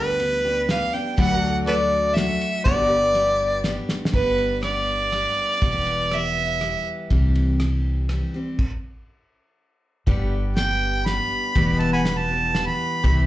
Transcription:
Already playing: upright bass D2, steel-string acoustic guitar G2 D3 G3 B3 D4 G4, pedal steel guitar G4 B4 D5, harmonica B4
0.19 steel-string acoustic guitar G3 B3 D4 G4, ride
0.44 steel-string acoustic guitar G3 B3 D4 G4
0.69 steel-string acoustic guitar G3 B3 D4 G4, fiddle F5, snare, ride
0.93 steel-string acoustic guitar G3 B3 D4 G4, fiddle G5
1.17 upright bass D2, steel-string acoustic guitar D3 F#3 A3 D4 F#4, pedal steel guitar G4 B4 D5, fiddle F#5, kick, ride
1.38 pedal steel guitar F#4
1.44 pedal steel guitar A4
1.66 steel-string acoustic guitar F#3 A3 D4 F#4, harmonica A4 B4 D5, ride
2.15 steel-string acoustic guitar F#3 A3 D4 F#4, harmonica E5, snare, ride
2.41 ride
2.64 upright bass G1, steel-string acoustic guitar G2 D3 G3 B3 D4 G4, pedal steel guitar F#4 A4 D5, harmonica D5, kick, ride
2.86 pedal steel guitar G4
2.92 pedal steel guitar B4
3.14 steel-string acoustic guitar G3 B3 D4 G4, ride
3.64 steel-string acoustic guitar G3 B3 D4 G4, snare, ride
3.89 snare
4.05 snare
4.13 upright bass G1, steel-string acoustic guitar G2 D3 G3 B3 D4 G4, fiddle B4, kick, ride
4.38 ride
4.63 steel-string acoustic guitar G3 B3 D4 G4, fiddle D5, cross-stick, ride
5.12 steel-string acoustic guitar G3 B3 D4 G4, cross-stick, ride
5.62 upright bass E1, steel-string acoustic guitar E2 B2 E3 G3 B3 G4, kick, ride
5.87 ride
6.11 steel-string acoustic guitar E3 G3 B3 G4, fiddle E5, cross-stick, ride
6.61 steel-string acoustic guitar E3 G3 B3 G4, cross-stick, ride
7.10 upright bass C2, steel-string acoustic guitar C3 E3 G3 C4 G4, kick, ride
7.35 ride
7.60 steel-string acoustic guitar E3 G3 C4 G4, cross-stick, ride
8.09 steel-string acoustic guitar E3 G3 C4 G4, cross-stick, ride
8.34 steel-string acoustic guitar G3 C4 G4
8.59 kick, crash
10.07 upright bass G1, steel-string acoustic guitar G2 D3 G3 B3 D4 G4, pedal steel guitar G4 B4 D5, kick, ride
10.56 steel-string acoustic guitar G3 B3 D4 G4, harmonica G5, snare, ride
11.05 steel-string acoustic guitar G3 B3 D4 G4, harmonica B5, snare, ride
11.55 upright bass E1, steel-string acoustic guitar E2 B2 E3 G3 B3 G4, pedal steel guitar G4 B4 D5, kick, ride
11.80 pedal steel guitar E5, harmonica A5, ride
11.93 harmonica F#5 G#5 B5
12.04 steel-string acoustic guitar E3 G3 B3 G4, snare, ride
12.18 harmonica A5
12.30 steel-string acoustic guitar E3 G3 B3 G4
12.54 steel-string acoustic guitar E3 G3 B3 G4, snare, ride
12.67 harmonica B5
13.04 upright bass C2, steel-string acoustic guitar C3 E3 G3 C4 G4, pedal steel guitar G4 B4 E5, kick, ride
13.24 pedal steel guitar C5

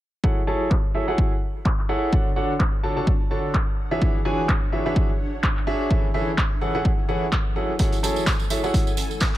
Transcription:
0.24 grand piano F#3 E4 G#4 A4 C#5 F#5, ambient pad E4, kick
0.47 grand piano F#3 E4 G#4 A4 C#5 A5
0.58 ambient pad A4
0.71 kick, clap
0.94 grand piano F#3 E4 G#4 A4 C#5 E5
1.08 grand piano F#3 E4 G#4 A4 C#5 F#5, ambient pad F#5 G#5
1.18 kick
1.65 kick, clap
1.79 clap
1.89 grand piano E4 G#4 A4 C#5 F#5
2.13 grand piano D3, ambient pad D4, kick
2.36 grand piano D3 D4 F#4 A4 C#5 F#5
2.60 kick, clap
2.83 grand piano D3 D4 F#4 A4 C#5 A5
2.87 ambient pad C#5
2.97 grand piano D3 D4 F#4 A4 C#5 A5
3.07 kick
3.31 grand piano D3 D4 F#4 A4 C#5 A5
3.54 kick, clap
3.91 grand piano E3 D4 F#4 G#4 C#5 E5
4.02 grand piano E3 D4 F#4 G#4 C#5, kick
4.15 ambient pad G#4
4.25 grand piano E3 D4 F#4 G#4 C#5 G#5
4.46 ambient pad E5, kick, clap
4.72 grand piano E3 D4 F#4 G#4 C#5 E5
4.86 grand piano E3 D4 F#4 G#4 C#5 E5
4.96 kick
5.43 kick, clap
5.57 clap
5.67 grand piano D4 F#4 G#4 C#5 E5
5.91 grand piano E3 C#4 E4 G#4 A4, ambient pad E3, kick
6.14 grand piano E3 C#4 E4 G#4 A4 E5
6.38 kick, clap
6.51 ambient pad C#4
6.61 grand piano E3 C#4 E4 G#4 A4 F#5
6.75 grand piano E3 C#4 E4 G#4 A4 F#5, ambient pad A4 G#5
6.85 kick
7.09 grand piano E3 C#4 E4 G#4 A4 F#5
7.32 kick, clap
7.56 grand piano F#3 C#4 E4 G#4 A4 F#5
7.79 grand piano F#3 E4 G#4 A4 C#5 F#5, ambient pad E4, kick, closed hi-hat, tambourine
7.92 closed hi-hat, tambourine
8.03 grand piano F#3 E4 G#4 A4 C#5 A5, closed hi-hat, tambourine
8.16 ambient pad F#5, tambourine
8.26 kick, snare, clap, closed hi-hat, tambourine
8.39 tambourine
8.50 grand piano F#3 E4 G#4 A4 C#5 E5, closed hi-hat, tambourine
8.64 grand piano F#3 E4 G#4 A4 C#5 F#5, tambourine
8.74 kick, closed hi-hat, tambourine
8.87 tambourine
8.97 closed hi-hat, tambourine
9.11 tambourine
9.20 kick, snare, clap, closed hi-hat, tambourine

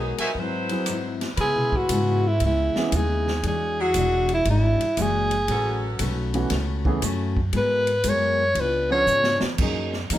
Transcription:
Already playing: upright bass B1, saxophone section F#3 B3 D#4 G#4, steel-string acoustic guitar G#3 B3 F#4 A#4
0.18 saxophone section F#3 B3 D#4 A#4, trumpet section F#4 C5 E5 G#5, muted upright bass stroke, ride
0.35 steel-string acoustic guitar G#2 F#3 C4, saxophone section F#3 E4 B4 C5, kick
0.40 steel-string acoustic guitar E4
0.69 grand piano F#3 C4 E4 G#4, ride
0.86 steel-string acoustic guitar G#2 F#3, cross-stick, hi-hat pedal, ride
0.90 steel-string acoustic guitar C4 E4
1.21 snare, ride
1.36 upright bass C#3, steel-string acoustic guitar C#3, saxophone section G#3 C#4 E4 B4, kick, ride
1.40 steel-string acoustic guitar G#3 B3 E4, alto saxophone G#4
1.56 upright bass B2
1.72 upright bass G#2, kick
1.77 alto saxophone F#4
1.89 upright bass G#2, steel-string acoustic guitar C#3 G#3 B3, kick, hi-hat pedal, ride
1.93 steel-string acoustic guitar E4
2.28 alto saxophone E4
2.40 upright bass C#2, steel-string acoustic guitar C#3, kick, ride
2.44 steel-string acoustic guitar G#3 B3 E4, alto saxophone E4
2.76 grand piano E3 G#3 B3 C#4 G#4, muted upright bass stroke, snare
2.92 upright bass D#2, steel-string acoustic guitar C#3 G#3 B3, kick, hi-hat pedal, ride
2.96 steel-string acoustic guitar E4, alto saxophone G#4
3.28 snare
3.43 upright bass E2, steel-string acoustic guitar E3 G#3 D4 F#4, kick, ride
3.48 alto saxophone G#4
3.79 saxophone section F#3 D4 E4 G#4, alto saxophone F#4
3.94 upright bass E1, steel-string acoustic guitar E3 G#3 D4, kick, hi-hat pedal, ride
3.99 steel-string acoustic guitar F#4
4.29 ride
4.34 alto saxophone E4
4.45 upright bass G#1, steel-string acoustic guitar E3 G#3 D4, kick, ride
4.50 alto saxophone E4, steel-string acoustic guitar F#4
4.81 muted upright bass stroke, ride
4.97 upright bass F#1, steel-string acoustic guitar E3 G#3 D4 F#4, kick, hi-hat pedal, ride
5.02 alto saxophone G#4
5.31 ride
5.48 upright bass A1, saxophone section F#3 B3 C#4 A4, steel-string acoustic guitar A3 C#4, kick, ride
5.52 steel-string acoustic guitar F#4 B4
5.99 upright bass B1, steel-string acoustic guitar A3 C#4 F#4, kick, hi-hat pedal, ride
6.03 steel-string acoustic guitar B4
6.34 grand piano E3 A3 B3 C#4 F#4, ride
6.50 upright bass C#2, steel-string acoustic guitar A3 C#4 F#4, kick, snare, ride
6.54 steel-string acoustic guitar B4
6.85 grand piano E3 A3 B3 C#4 G#4, kick
7.02 upright bass F#2, steel-string acoustic guitar A3 C#4 F#4 B4, kick, hi-hat pedal, ride
7.37 kick
7.53 upright bass G#2, steel-string acoustic guitar G#3 B3 F#4 A#4, kick, ride
7.57 alto saxophone B4
7.87 ride
8.04 upright bass F#2, steel-string acoustic guitar G#3 B3 F#4 A#4, kick, hi-hat pedal, ride
8.09 alto saxophone C#5
8.55 upright bass C#2, steel-string acoustic guitar C#3 B3 D4, kick, ride
8.60 steel-string acoustic guitar F4, alto saxophone B4
8.90 saxophone section D3 B3 C#4 F4, grand piano F3 B3 C#4 D4 G#4, alto saxophone C#5
9.07 upright bass G#2, steel-string acoustic guitar C#3 B3 D4 F4, hi-hat pedal
9.24 snare
9.40 muted upright bass stroke, snare
9.58 upright bass F#2, grand piano F#3 A#3 C#4 D#4 G#4, steel-string acoustic guitar F#3 A#3 D#4, kick, crash
9.64 steel-string acoustic guitar G#4
9.93 snare
10.10 upright bass E2, grand piano F#3 A#3 C#4 D#4 A#4, steel-string acoustic guitar F#3 A#3 D#4, kick, hi-hat pedal, ride
10.14 steel-string acoustic guitar G#4

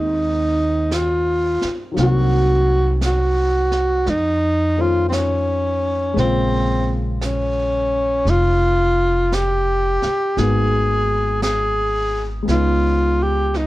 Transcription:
Already playing: upright bass D#2, grand piano D#3 G#3 A#3 C4 D#4 F4 G4, tenor saxophone D#4
0.91 tenor saxophone F4, brush sweep, snare, hi-hat pedal
1.62 muted upright bass stroke, snare
1.92 grand piano D#3 F#3
1.97 upright bass C2, grand piano A#3 C4, tenor saxophone F#4, brush sweep, snare
2.03 grand piano F#4
3.01 brush sweep, snare, hi-hat pedal
3.06 tenor saxophone F#4
3.72 snare
4.07 upright bass F2, tenor saxophone D#4, brush sweep, snare
4.77 grand piano D#3 A3 C#4 C5
4.81 tenor saxophone F4, grand piano F4
5.09 tenor saxophone C4, brush sweep, snare, hi-hat pedal
5.13 tenor saxophone C#4
6.13 upright bass A#1, grand piano G#3 A#3 C5, brush sweep, snare
6.18 grand piano C#3 F4, tenor saxophone C4
7.22 tenor saxophone C#4, brush sweep, snare, hi-hat pedal
8.25 upright bass F1, brush sweep, snare
8.30 tenor saxophone F4
9.32 tenor saxophone G4, brush sweep, snare, hi-hat pedal
10.02 muted upright bass stroke, snare
10.37 upright bass G#1, grand piano G#3 A#3 B3 D#4 F#4, tenor saxophone G#4, brush sweep, snare
11.42 tenor saxophone G#4, brush sweep, snare, hi-hat pedal
12.42 grand piano G#3 B3
12.48 upright bass C#2, grand piano C#4 D#4, tenor saxophone F4, brush sweep, snare
12.53 grand piano F4
13.22 tenor saxophone G4
13.54 tenor saxophone D#4, brush sweep, snare, hi-hat pedal

